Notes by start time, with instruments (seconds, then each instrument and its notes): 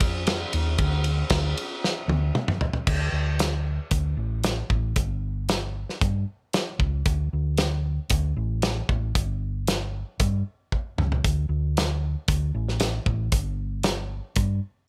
0.00 fingered electric bass F2, kick, ride
0.27 snare, ride
0.53 fingered electric bass D#2, ride
0.78 fingered electric bass D2, kick, ride
1.04 ride
1.30 fingered electric bass D2, kick, snare, ride
1.57 ride
1.84 snare
2.08 fingered electric bass D2, high tom
2.35 mid tom
2.48 mid tom
2.61 floor tom
2.73 floor tom
2.87 fingered electric bass D2, kick, crash
3.12 fingered electric bass D2
3.39 snare, closed hi-hat
3.91 fingered electric bass D2, kick, closed hi-hat
4.17 fingered electric bass A1
4.44 snare, closed hi-hat
4.70 fingered electric bass A1, kick
4.96 fingered electric bass G1, kick, closed hi-hat
5.49 snare, closed hi-hat
5.89 snare
6.01 fingered electric bass G2, kick, closed hi-hat
6.53 snare, closed hi-hat
6.79 fingered electric bass C#2, kick
7.06 fingered electric bass D2, kick, closed hi-hat
7.33 fingered electric bass D2
7.58 snare, closed hi-hat
8.10 fingered electric bass D2, kick, closed hi-hat
8.37 fingered electric bass A1
8.62 snare, closed hi-hat
8.89 fingered electric bass A1, kick
9.15 fingered electric bass G1, kick, closed hi-hat
9.67 snare, closed hi-hat
10.20 fingered electric bass G2, kick, closed hi-hat
10.72 kick
10.98 fingered electric bass C#2, mid tom
11.12 floor tom
11.24 fingered electric bass D2, kick, closed hi-hat
11.49 fingered electric bass D2
11.77 snare, closed hi-hat
12.28 fingered electric bass D2, kick, closed hi-hat
12.54 fingered electric bass A1
12.68 snare
12.80 snare, closed hi-hat
13.06 fingered electric bass A1, kick
13.32 fingered electric bass G1, kick, closed hi-hat
13.83 snare, closed hi-hat
14.36 fingered electric bass G2, kick, closed hi-hat